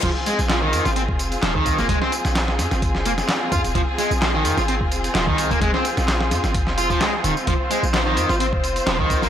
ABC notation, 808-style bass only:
X:1
M:4/4
L:1/16
Q:"Swing 16ths" 1/4=129
K:Fm
V:1 name="808-style bass" clef=bass
F,,, z2 B,,,3 F,, A,,,2 F,,,2 z E,,, C,,2 F,,, | F,,, z2 B,,,3 F,, A,,,2 F,,,2 z3 F,, E,,, | F,,, z2 B,,,3 F,, A,,,2 F,,,2 z E,,, C,,2 F,,, | F,,, z2 B,,,3 F,, A,,,2 F,,,2 z3 E,,, z |
F,,, z2 B,,,3 F,, A,,,2 F,,,2 z E,,, C,,2 F,,, |]